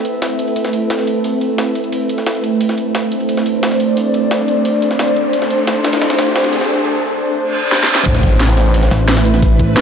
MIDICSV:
0, 0, Header, 1, 9, 480
1, 0, Start_track
1, 0, Key_signature, 0, "minor"
1, 0, Tempo, 340909
1, 1750, Time_signature, 4, 2, 24, 8
1, 13815, End_track
2, 0, Start_track
2, 0, Title_t, "Ambient pad"
2, 0, Program_c, 0, 92
2, 0, Note_on_c, 0, 60, 79
2, 0, Note_on_c, 0, 69, 73
2, 0, Note_on_c, 0, 76, 82
2, 4658, Note_on_c, 0, 74, 80
2, 4803, Note_off_c, 0, 76, 0
2, 9430, Note_off_c, 0, 60, 0
2, 9430, Note_off_c, 0, 69, 0
2, 9430, Note_off_c, 0, 74, 0
2, 13815, End_track
3, 0, Start_track
3, 0, Title_t, "Synth drone"
3, 0, Program_c, 1, 95
3, 0, Note_on_c, 1, 57, 74
3, 0, Note_on_c, 1, 64, 67
3, 0, Note_on_c, 1, 71, 84
3, 3614, Note_off_c, 1, 64, 0
3, 3638, Note_off_c, 1, 71, 0
3, 3670, Note_on_c, 1, 62, 72
3, 3670, Note_on_c, 1, 72, 81
3, 11294, Note_off_c, 1, 57, 0
3, 11294, Note_off_c, 1, 62, 0
3, 11318, Note_off_c, 1, 72, 0
3, 11351, Note_on_c, 1, 57, 78
3, 11351, Note_on_c, 1, 64, 73
3, 11351, Note_on_c, 1, 71, 85
3, 13815, Note_off_c, 1, 57, 0
3, 13815, Note_off_c, 1, 64, 0
3, 13815, Note_off_c, 1, 71, 0
3, 13815, End_track
4, 0, Start_track
4, 0, Title_t, "Detuned saw bass"
4, 0, Program_c, 2, 39
4, 11351, Note_on_c, 2, 33, 98
4, 12531, Note_off_c, 2, 33, 0
4, 13815, End_track
5, 0, Start_track
5, 0, Title_t, "Wobble bass"
5, 0, Program_c, 3, 39
5, 12550, Note_on_c, 3, 33, 94
5, 13731, Note_off_c, 3, 33, 0
5, 13815, End_track
6, 0, Start_track
6, 0, Title_t, "Impact"
6, 0, Program_c, 4, 103
6, 11351, Note_on_c, 4, 60, 82
6, 13270, Note_off_c, 4, 60, 0
6, 13815, End_track
7, 0, Start_track
7, 0, Title_t, "Reverse cymbal"
7, 0, Program_c, 5, 119
7, 10390, Note_on_c, 5, 60, 77
7, 11350, Note_off_c, 5, 60, 0
7, 13815, End_track
8, 0, Start_track
8, 0, Title_t, "Riser"
8, 0, Program_c, 6, 103
8, 3670, Note_on_c, 6, 60, 84
8, 9430, Note_off_c, 6, 60, 0
8, 13815, End_track
9, 0, Start_track
9, 0, Title_t, "Drums"
9, 69, Note_on_c, 9, 42, 63
9, 70, Note_on_c, 9, 51, 68
9, 210, Note_off_c, 9, 42, 0
9, 211, Note_off_c, 9, 51, 0
9, 309, Note_on_c, 9, 42, 88
9, 310, Note_on_c, 9, 38, 112
9, 310, Note_on_c, 9, 51, 82
9, 450, Note_off_c, 9, 42, 0
9, 451, Note_off_c, 9, 38, 0
9, 451, Note_off_c, 9, 51, 0
9, 549, Note_on_c, 9, 42, 63
9, 550, Note_on_c, 9, 51, 70
9, 670, Note_off_c, 9, 51, 0
9, 670, Note_on_c, 9, 51, 44
9, 690, Note_off_c, 9, 42, 0
9, 789, Note_on_c, 9, 42, 94
9, 790, Note_off_c, 9, 51, 0
9, 790, Note_on_c, 9, 51, 90
9, 910, Note_on_c, 9, 38, 56
9, 930, Note_off_c, 9, 42, 0
9, 931, Note_off_c, 9, 51, 0
9, 1029, Note_on_c, 9, 42, 66
9, 1030, Note_on_c, 9, 51, 67
9, 1051, Note_off_c, 9, 38, 0
9, 1170, Note_off_c, 9, 42, 0
9, 1170, Note_off_c, 9, 51, 0
9, 1269, Note_on_c, 9, 38, 113
9, 1269, Note_on_c, 9, 42, 93
9, 1269, Note_on_c, 9, 51, 90
9, 1390, Note_off_c, 9, 38, 0
9, 1390, Note_off_c, 9, 42, 0
9, 1390, Note_on_c, 9, 38, 41
9, 1390, Note_on_c, 9, 42, 36
9, 1410, Note_off_c, 9, 51, 0
9, 1509, Note_on_c, 9, 51, 65
9, 1510, Note_off_c, 9, 42, 0
9, 1510, Note_on_c, 9, 42, 65
9, 1530, Note_off_c, 9, 38, 0
9, 1650, Note_off_c, 9, 42, 0
9, 1650, Note_off_c, 9, 51, 0
9, 1749, Note_on_c, 9, 42, 83
9, 1749, Note_on_c, 9, 46, 84
9, 1890, Note_off_c, 9, 42, 0
9, 1890, Note_off_c, 9, 46, 0
9, 1989, Note_on_c, 9, 42, 60
9, 1989, Note_on_c, 9, 51, 66
9, 2130, Note_off_c, 9, 42, 0
9, 2130, Note_off_c, 9, 51, 0
9, 2229, Note_on_c, 9, 38, 107
9, 2229, Note_on_c, 9, 42, 88
9, 2229, Note_on_c, 9, 51, 82
9, 2370, Note_off_c, 9, 38, 0
9, 2370, Note_off_c, 9, 42, 0
9, 2370, Note_off_c, 9, 51, 0
9, 2469, Note_on_c, 9, 42, 61
9, 2469, Note_on_c, 9, 51, 70
9, 2589, Note_off_c, 9, 42, 0
9, 2589, Note_on_c, 9, 42, 33
9, 2610, Note_off_c, 9, 51, 0
9, 2709, Note_off_c, 9, 42, 0
9, 2709, Note_on_c, 9, 42, 91
9, 2710, Note_on_c, 9, 51, 93
9, 2850, Note_off_c, 9, 42, 0
9, 2850, Note_off_c, 9, 51, 0
9, 2949, Note_on_c, 9, 42, 63
9, 2950, Note_on_c, 9, 51, 72
9, 3070, Note_on_c, 9, 38, 47
9, 3090, Note_off_c, 9, 42, 0
9, 3090, Note_off_c, 9, 51, 0
9, 3189, Note_on_c, 9, 42, 90
9, 3190, Note_off_c, 9, 38, 0
9, 3190, Note_on_c, 9, 38, 115
9, 3190, Note_on_c, 9, 51, 87
9, 3309, Note_off_c, 9, 42, 0
9, 3309, Note_on_c, 9, 42, 34
9, 3330, Note_off_c, 9, 38, 0
9, 3330, Note_off_c, 9, 51, 0
9, 3429, Note_off_c, 9, 42, 0
9, 3429, Note_on_c, 9, 42, 62
9, 3430, Note_on_c, 9, 51, 69
9, 3570, Note_off_c, 9, 42, 0
9, 3570, Note_off_c, 9, 51, 0
9, 3669, Note_on_c, 9, 42, 86
9, 3670, Note_on_c, 9, 51, 93
9, 3790, Note_on_c, 9, 38, 52
9, 3810, Note_off_c, 9, 42, 0
9, 3811, Note_off_c, 9, 51, 0
9, 3909, Note_on_c, 9, 42, 63
9, 3910, Note_on_c, 9, 51, 65
9, 3931, Note_off_c, 9, 38, 0
9, 4050, Note_off_c, 9, 42, 0
9, 4051, Note_off_c, 9, 51, 0
9, 4149, Note_on_c, 9, 42, 86
9, 4150, Note_on_c, 9, 38, 106
9, 4150, Note_on_c, 9, 51, 81
9, 4290, Note_off_c, 9, 42, 0
9, 4291, Note_off_c, 9, 38, 0
9, 4291, Note_off_c, 9, 51, 0
9, 4389, Note_on_c, 9, 42, 64
9, 4390, Note_on_c, 9, 51, 69
9, 4510, Note_off_c, 9, 51, 0
9, 4510, Note_on_c, 9, 51, 44
9, 4530, Note_off_c, 9, 42, 0
9, 4630, Note_off_c, 9, 51, 0
9, 4630, Note_on_c, 9, 42, 96
9, 4630, Note_on_c, 9, 51, 89
9, 4751, Note_on_c, 9, 38, 54
9, 4770, Note_off_c, 9, 42, 0
9, 4771, Note_off_c, 9, 51, 0
9, 4870, Note_on_c, 9, 42, 68
9, 4871, Note_on_c, 9, 51, 69
9, 4891, Note_off_c, 9, 38, 0
9, 5011, Note_off_c, 9, 42, 0
9, 5011, Note_off_c, 9, 51, 0
9, 5110, Note_on_c, 9, 42, 87
9, 5111, Note_on_c, 9, 38, 118
9, 5111, Note_on_c, 9, 51, 91
9, 5230, Note_off_c, 9, 42, 0
9, 5230, Note_on_c, 9, 42, 34
9, 5231, Note_off_c, 9, 38, 0
9, 5231, Note_on_c, 9, 38, 40
9, 5251, Note_off_c, 9, 51, 0
9, 5350, Note_off_c, 9, 42, 0
9, 5350, Note_on_c, 9, 42, 61
9, 5351, Note_on_c, 9, 51, 68
9, 5372, Note_off_c, 9, 38, 0
9, 5490, Note_off_c, 9, 42, 0
9, 5492, Note_off_c, 9, 51, 0
9, 5589, Note_on_c, 9, 42, 92
9, 5590, Note_on_c, 9, 46, 81
9, 5730, Note_off_c, 9, 42, 0
9, 5731, Note_off_c, 9, 46, 0
9, 5830, Note_on_c, 9, 42, 64
9, 5830, Note_on_c, 9, 51, 65
9, 5970, Note_off_c, 9, 42, 0
9, 5971, Note_off_c, 9, 51, 0
9, 6069, Note_on_c, 9, 42, 88
9, 6070, Note_on_c, 9, 38, 113
9, 6070, Note_on_c, 9, 51, 86
9, 6210, Note_off_c, 9, 42, 0
9, 6211, Note_off_c, 9, 38, 0
9, 6211, Note_off_c, 9, 51, 0
9, 6309, Note_on_c, 9, 42, 66
9, 6310, Note_on_c, 9, 51, 70
9, 6450, Note_off_c, 9, 42, 0
9, 6451, Note_off_c, 9, 51, 0
9, 6549, Note_on_c, 9, 42, 94
9, 6550, Note_on_c, 9, 51, 89
9, 6690, Note_off_c, 9, 42, 0
9, 6691, Note_off_c, 9, 51, 0
9, 6790, Note_on_c, 9, 42, 67
9, 6790, Note_on_c, 9, 51, 70
9, 6910, Note_on_c, 9, 38, 50
9, 6930, Note_off_c, 9, 42, 0
9, 6931, Note_off_c, 9, 51, 0
9, 7030, Note_off_c, 9, 38, 0
9, 7030, Note_on_c, 9, 38, 120
9, 7030, Note_on_c, 9, 42, 96
9, 7030, Note_on_c, 9, 51, 89
9, 7150, Note_off_c, 9, 42, 0
9, 7150, Note_on_c, 9, 42, 36
9, 7171, Note_off_c, 9, 38, 0
9, 7171, Note_off_c, 9, 51, 0
9, 7270, Note_off_c, 9, 42, 0
9, 7270, Note_on_c, 9, 42, 63
9, 7411, Note_off_c, 9, 42, 0
9, 7510, Note_on_c, 9, 42, 99
9, 7510, Note_on_c, 9, 51, 91
9, 7630, Note_on_c, 9, 38, 54
9, 7650, Note_off_c, 9, 42, 0
9, 7651, Note_off_c, 9, 51, 0
9, 7750, Note_on_c, 9, 42, 68
9, 7750, Note_on_c, 9, 51, 70
9, 7771, Note_off_c, 9, 38, 0
9, 7890, Note_off_c, 9, 42, 0
9, 7891, Note_off_c, 9, 51, 0
9, 7990, Note_on_c, 9, 38, 107
9, 7990, Note_on_c, 9, 42, 99
9, 7990, Note_on_c, 9, 51, 88
9, 8130, Note_off_c, 9, 42, 0
9, 8131, Note_off_c, 9, 38, 0
9, 8131, Note_off_c, 9, 51, 0
9, 8230, Note_on_c, 9, 38, 108
9, 8230, Note_on_c, 9, 42, 67
9, 8230, Note_on_c, 9, 51, 83
9, 8350, Note_off_c, 9, 38, 0
9, 8350, Note_off_c, 9, 51, 0
9, 8350, Note_on_c, 9, 38, 108
9, 8350, Note_on_c, 9, 51, 82
9, 8371, Note_off_c, 9, 42, 0
9, 8469, Note_on_c, 9, 42, 94
9, 8470, Note_off_c, 9, 38, 0
9, 8470, Note_off_c, 9, 51, 0
9, 8470, Note_on_c, 9, 38, 110
9, 8470, Note_on_c, 9, 51, 82
9, 8590, Note_off_c, 9, 38, 0
9, 8590, Note_off_c, 9, 51, 0
9, 8590, Note_on_c, 9, 38, 97
9, 8590, Note_on_c, 9, 51, 81
9, 8610, Note_off_c, 9, 42, 0
9, 8709, Note_on_c, 9, 42, 71
9, 8710, Note_off_c, 9, 38, 0
9, 8710, Note_off_c, 9, 51, 0
9, 8710, Note_on_c, 9, 38, 107
9, 8710, Note_on_c, 9, 51, 79
9, 8850, Note_off_c, 9, 42, 0
9, 8851, Note_off_c, 9, 38, 0
9, 8851, Note_off_c, 9, 51, 0
9, 8950, Note_on_c, 9, 38, 106
9, 8950, Note_on_c, 9, 42, 95
9, 8950, Note_on_c, 9, 51, 82
9, 9069, Note_off_c, 9, 42, 0
9, 9069, Note_on_c, 9, 42, 36
9, 9070, Note_off_c, 9, 38, 0
9, 9070, Note_on_c, 9, 38, 43
9, 9091, Note_off_c, 9, 51, 0
9, 9190, Note_off_c, 9, 42, 0
9, 9190, Note_on_c, 9, 42, 67
9, 9190, Note_on_c, 9, 51, 82
9, 9211, Note_off_c, 9, 38, 0
9, 9310, Note_on_c, 9, 38, 51
9, 9331, Note_off_c, 9, 42, 0
9, 9331, Note_off_c, 9, 51, 0
9, 9451, Note_off_c, 9, 38, 0
9, 10870, Note_on_c, 9, 38, 72
9, 11011, Note_off_c, 9, 38, 0
9, 11030, Note_on_c, 9, 38, 83
9, 11171, Note_off_c, 9, 38, 0
9, 11190, Note_on_c, 9, 38, 97
9, 11331, Note_off_c, 9, 38, 0
9, 11350, Note_on_c, 9, 36, 112
9, 11350, Note_on_c, 9, 42, 97
9, 11350, Note_on_c, 9, 49, 101
9, 11350, Note_on_c, 9, 51, 90
9, 11470, Note_on_c, 9, 38, 55
9, 11491, Note_off_c, 9, 36, 0
9, 11491, Note_off_c, 9, 42, 0
9, 11491, Note_off_c, 9, 49, 0
9, 11491, Note_off_c, 9, 51, 0
9, 11590, Note_on_c, 9, 42, 68
9, 11590, Note_on_c, 9, 51, 69
9, 11591, Note_on_c, 9, 36, 107
9, 11611, Note_off_c, 9, 38, 0
9, 11731, Note_off_c, 9, 36, 0
9, 11731, Note_off_c, 9, 42, 0
9, 11731, Note_off_c, 9, 51, 0
9, 11830, Note_on_c, 9, 38, 115
9, 11830, Note_on_c, 9, 42, 97
9, 11830, Note_on_c, 9, 51, 82
9, 11971, Note_off_c, 9, 38, 0
9, 11971, Note_off_c, 9, 42, 0
9, 11971, Note_off_c, 9, 51, 0
9, 12070, Note_on_c, 9, 40, 37
9, 12070, Note_on_c, 9, 42, 70
9, 12071, Note_on_c, 9, 51, 73
9, 12190, Note_off_c, 9, 51, 0
9, 12190, Note_on_c, 9, 51, 43
9, 12210, Note_off_c, 9, 40, 0
9, 12210, Note_off_c, 9, 42, 0
9, 12310, Note_off_c, 9, 51, 0
9, 12310, Note_on_c, 9, 42, 95
9, 12310, Note_on_c, 9, 51, 95
9, 12430, Note_on_c, 9, 38, 54
9, 12450, Note_off_c, 9, 42, 0
9, 12451, Note_off_c, 9, 51, 0
9, 12549, Note_on_c, 9, 42, 73
9, 12550, Note_off_c, 9, 38, 0
9, 12550, Note_on_c, 9, 38, 108
9, 12550, Note_on_c, 9, 51, 81
9, 12690, Note_off_c, 9, 42, 0
9, 12691, Note_off_c, 9, 38, 0
9, 12691, Note_off_c, 9, 51, 0
9, 12789, Note_on_c, 9, 38, 120
9, 12789, Note_on_c, 9, 42, 98
9, 12790, Note_on_c, 9, 51, 66
9, 12910, Note_off_c, 9, 38, 0
9, 12910, Note_off_c, 9, 51, 0
9, 12910, Note_on_c, 9, 38, 110
9, 12910, Note_on_c, 9, 51, 77
9, 12930, Note_off_c, 9, 42, 0
9, 13030, Note_on_c, 9, 42, 68
9, 13051, Note_off_c, 9, 38, 0
9, 13051, Note_off_c, 9, 51, 0
9, 13149, Note_on_c, 9, 40, 34
9, 13150, Note_on_c, 9, 51, 63
9, 13170, Note_off_c, 9, 42, 0
9, 13269, Note_on_c, 9, 42, 95
9, 13270, Note_on_c, 9, 36, 124
9, 13270, Note_on_c, 9, 46, 82
9, 13290, Note_off_c, 9, 40, 0
9, 13291, Note_off_c, 9, 51, 0
9, 13410, Note_off_c, 9, 42, 0
9, 13411, Note_off_c, 9, 36, 0
9, 13411, Note_off_c, 9, 46, 0
9, 13510, Note_on_c, 9, 36, 112
9, 13510, Note_on_c, 9, 42, 65
9, 13511, Note_on_c, 9, 51, 69
9, 13651, Note_off_c, 9, 36, 0
9, 13651, Note_off_c, 9, 42, 0
9, 13651, Note_off_c, 9, 51, 0
9, 13750, Note_on_c, 9, 38, 118
9, 13750, Note_on_c, 9, 42, 90
9, 13750, Note_on_c, 9, 51, 85
9, 13815, Note_off_c, 9, 38, 0
9, 13815, Note_off_c, 9, 42, 0
9, 13815, Note_off_c, 9, 51, 0
9, 13815, End_track
0, 0, End_of_file